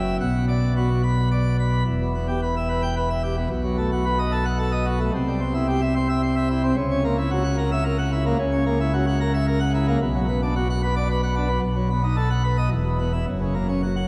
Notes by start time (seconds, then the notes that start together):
Already playing: F#1 F#2 E5
0.20 B1 B2 F#5
0.48 D5
0.76 B3 F#4
1.03 B5
1.31 D5
1.59 B5
1.86 E1 E2
2.01 B2
2.14 B3
2.28 G4
2.42 B4
2.57 E5
2.69 B4
2.82 G5
2.96 B4
3.10 E5
3.23 G4
3.36 B3
3.49 B1 B2
3.63 F#3
3.78 A3
3.92 F#4
4.05 B4
4.19 D#5
4.32 A4
4.45 F#5
4.59 A4
4.72 D#5
4.85 F#4
5.00 A3
5.14 C2 C3
5.27 G3
5.40 C4
5.54 E4
5.68 G4
5.81 E5
5.95 C5
6.09 E5
6.23 C5
6.36 E5
6.50 E4
6.63 C4
6.76 C#2 C#3
6.91 C#4
7.04 A#3
7.18 E4
7.30 F#4
7.44 F#5
7.58 A#4
7.72 E5
7.84 A#4
7.98 F#5
8.12 E4
8.26 A#3
8.39 C#2 C#3
8.52 C#4
8.66 A#3
8.80 E4
8.93 F#4
9.07 F#5
9.20 A#4
9.34 E5
9.47 A#4
9.60 F#5
9.74 E4
9.88 A#3
10.01 B1 B2
10.15 F#3
10.28 B3
10.42 D4
10.55 F#4
10.70 F#5
10.83 B4
10.96 D5
11.09 B4
11.23 F#5
11.36 D4
11.48 B3
11.62 B1 B2
11.76 F#3
11.90 B3
12.03 D#4
12.16 A4
12.30 F#5
12.44 B4
12.57 D#5
12.71 E1 E2
12.85 B2
12.99 B3
13.12 E4
13.27 F#1 F#2
13.41 C#3
13.54 A#3
13.68 C#4
13.82 F#4
13.96 F#5